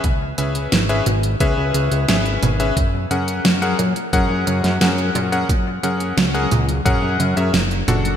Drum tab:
HH |x-xxxxxxx-xxxxxx|x-xxxxxxx-xxxxxx|x-xxxxxxx-xxxxxx|
SD |----o-------o---|----o------oo---|----o-------o---|
BD |o-------o-------|o-------o-------|o-------o-------|